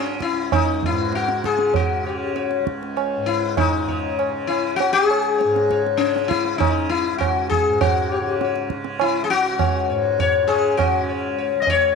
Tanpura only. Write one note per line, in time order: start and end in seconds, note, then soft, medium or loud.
0.00 0.32 C#2 medium
0.00 0.88 G#2 medium
0.00 1.46 C#3 medium
0.32 2.60 C#2 medium
0.88 3.16 G#2 medium
1.46 2.03 C#3 medium
2.03 3.74 C#3 medium
2.60 4.86 C#2 medium
3.17 5.43 G#2 medium
3.74 4.29 C#3 medium
4.29 6.00 C#3 medium
4.87 7.11 C#2 medium
5.44 7.66 G#2 medium
6.00 6.55 C#3 medium
6.55 8.21 C#3 medium
7.11 9.32 C#2 medium
7.67 9.88 G#2 medium
8.21 8.76 C#3 medium
8.76 10.43 C#3 medium
9.32 11.55 C#2 medium
9.89 11.95 G#2 medium
10.43 11.00 C#3 medium
11.00 11.95 C#3 medium
11.55 11.95 C#2 medium